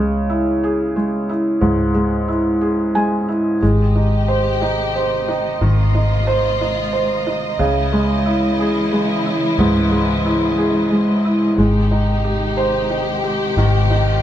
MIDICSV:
0, 0, Header, 1, 4, 480
1, 0, Start_track
1, 0, Key_signature, -4, "major"
1, 0, Tempo, 662983
1, 1171, Time_signature, 6, 3, 24, 8
1, 10297, End_track
2, 0, Start_track
2, 0, Title_t, "Felt piano"
2, 0, Program_c, 0, 0
2, 0, Control_c, 0, 64, 127
2, 0, Note_on_c, 0, 49, 83
2, 0, Note_on_c, 0, 56, 59
2, 214, Note_on_c, 0, 64, 58
2, 460, Note_on_c, 0, 68, 59
2, 686, Note_off_c, 0, 56, 0
2, 696, Note_on_c, 0, 56, 51
2, 926, Note_off_c, 0, 64, 0
2, 937, Note_on_c, 0, 64, 54
2, 1141, Note_off_c, 0, 49, 0
2, 1167, Note_on_c, 0, 44, 72
2, 1385, Note_off_c, 0, 68, 0
2, 1397, Note_off_c, 0, 56, 0
2, 1408, Note_on_c, 0, 56, 57
2, 1641, Note_off_c, 0, 64, 0
2, 1652, Note_on_c, 0, 64, 59
2, 1892, Note_on_c, 0, 68, 59
2, 2127, Note_off_c, 0, 56, 0
2, 2137, Note_on_c, 0, 80, 64
2, 2138, Note_on_c, 0, 56, 54
2, 2368, Note_off_c, 0, 64, 0
2, 2379, Note_on_c, 0, 64, 56
2, 2587, Note_off_c, 0, 44, 0
2, 2590, Note_off_c, 0, 80, 0
2, 2596, Note_off_c, 0, 68, 0
2, 2605, Note_off_c, 0, 56, 0
2, 2612, Note_off_c, 0, 64, 0
2, 2623, Note_on_c, 0, 56, 67
2, 2629, Control_c, 0, 64, 0
2, 2745, Control_c, 0, 64, 127
2, 2863, Note_on_c, 0, 63, 51
2, 3101, Note_on_c, 0, 72, 56
2, 3331, Note_off_c, 0, 63, 0
2, 3342, Note_on_c, 0, 63, 62
2, 3575, Note_off_c, 0, 72, 0
2, 3586, Note_on_c, 0, 72, 52
2, 3814, Note_off_c, 0, 63, 0
2, 3825, Note_on_c, 0, 63, 61
2, 4040, Note_off_c, 0, 56, 0
2, 4064, Note_on_c, 0, 51, 73
2, 4294, Note_off_c, 0, 63, 0
2, 4305, Note_on_c, 0, 63, 60
2, 4517, Note_off_c, 0, 72, 0
2, 4540, Note_on_c, 0, 72, 60
2, 4775, Note_off_c, 0, 63, 0
2, 4786, Note_on_c, 0, 63, 60
2, 5006, Note_off_c, 0, 72, 0
2, 5017, Note_on_c, 0, 72, 53
2, 5251, Note_off_c, 0, 63, 0
2, 5262, Note_on_c, 0, 63, 63
2, 5471, Note_off_c, 0, 51, 0
2, 5483, Note_off_c, 0, 72, 0
2, 5493, Note_off_c, 0, 63, 0
2, 5497, Note_on_c, 0, 49, 81
2, 5509, Control_c, 0, 64, 0
2, 5631, Control_c, 0, 64, 127
2, 5738, Note_on_c, 0, 56, 58
2, 5976, Note_on_c, 0, 64, 55
2, 6220, Note_on_c, 0, 68, 61
2, 6451, Note_off_c, 0, 56, 0
2, 6462, Note_on_c, 0, 56, 52
2, 6692, Note_off_c, 0, 64, 0
2, 6703, Note_on_c, 0, 64, 56
2, 6907, Note_off_c, 0, 49, 0
2, 6944, Note_on_c, 0, 44, 76
2, 7150, Note_off_c, 0, 68, 0
2, 7167, Note_off_c, 0, 56, 0
2, 7178, Note_on_c, 0, 56, 56
2, 7413, Note_off_c, 0, 64, 0
2, 7423, Note_on_c, 0, 64, 62
2, 7660, Note_on_c, 0, 68, 60
2, 7893, Note_off_c, 0, 56, 0
2, 7904, Note_on_c, 0, 56, 45
2, 8133, Note_off_c, 0, 64, 0
2, 8143, Note_on_c, 0, 64, 58
2, 8355, Note_off_c, 0, 44, 0
2, 8360, Note_off_c, 0, 68, 0
2, 8369, Note_off_c, 0, 56, 0
2, 8375, Note_off_c, 0, 64, 0
2, 8385, Note_on_c, 0, 56, 67
2, 8389, Control_c, 0, 64, 0
2, 8517, Control_c, 0, 64, 127
2, 8625, Note_on_c, 0, 63, 55
2, 8864, Note_on_c, 0, 67, 54
2, 9101, Note_on_c, 0, 72, 59
2, 9329, Note_off_c, 0, 63, 0
2, 9339, Note_on_c, 0, 63, 53
2, 9574, Note_off_c, 0, 67, 0
2, 9585, Note_on_c, 0, 67, 57
2, 9797, Note_off_c, 0, 56, 0
2, 9830, Note_on_c, 0, 51, 78
2, 10035, Note_off_c, 0, 72, 0
2, 10057, Note_off_c, 0, 63, 0
2, 10068, Note_on_c, 0, 63, 57
2, 10296, Note_off_c, 0, 67, 0
2, 10297, Note_off_c, 0, 51, 0
2, 10297, Note_off_c, 0, 63, 0
2, 10297, End_track
3, 0, Start_track
3, 0, Title_t, "String section"
3, 0, Program_c, 1, 48
3, 2622, Note_on_c, 1, 75, 69
3, 2625, Note_on_c, 1, 67, 86
3, 2627, Note_on_c, 1, 48, 76
3, 2630, Note_on_c, 1, 51, 67
3, 2631, Note_on_c, 1, 56, 72
3, 4055, Note_off_c, 1, 67, 0
3, 4061, Note_on_c, 1, 65, 90
3, 5476, Note_off_c, 1, 48, 0
3, 5478, Note_off_c, 1, 51, 0
3, 5484, Note_off_c, 1, 65, 0
3, 5497, Note_on_c, 1, 64, 89
3, 5498, Note_on_c, 1, 49, 80
3, 5501, Note_on_c, 1, 52, 81
3, 8350, Note_off_c, 1, 49, 0
3, 8350, Note_off_c, 1, 64, 0
3, 8352, Note_off_c, 1, 52, 0
3, 8354, Note_off_c, 1, 75, 0
3, 8386, Note_on_c, 1, 51, 74
3, 8386, Note_on_c, 1, 67, 85
3, 8388, Note_on_c, 1, 48, 76
3, 8391, Note_on_c, 1, 63, 76
3, 9815, Note_off_c, 1, 63, 0
3, 9825, Note_on_c, 1, 65, 76
3, 10297, Note_off_c, 1, 48, 0
3, 10297, Note_off_c, 1, 51, 0
3, 10297, Note_off_c, 1, 56, 0
3, 10297, Note_off_c, 1, 65, 0
3, 10297, Note_off_c, 1, 67, 0
3, 10297, End_track
4, 0, Start_track
4, 0, Title_t, "Fingered electric bass"
4, 0, Program_c, 2, 33
4, 0, Note_on_c, 2, 37, 104
4, 1146, Note_off_c, 2, 37, 0
4, 1174, Note_on_c, 2, 37, 103
4, 2591, Note_off_c, 2, 37, 0
4, 2626, Note_on_c, 2, 32, 107
4, 4041, Note_off_c, 2, 32, 0
4, 4064, Note_on_c, 2, 32, 97
4, 5471, Note_off_c, 2, 32, 0
4, 5497, Note_on_c, 2, 37, 100
4, 6907, Note_off_c, 2, 37, 0
4, 6941, Note_on_c, 2, 37, 108
4, 8353, Note_off_c, 2, 37, 0
4, 8383, Note_on_c, 2, 32, 100
4, 9796, Note_off_c, 2, 32, 0
4, 9823, Note_on_c, 2, 32, 96
4, 10297, Note_off_c, 2, 32, 0
4, 10297, End_track
0, 0, End_of_file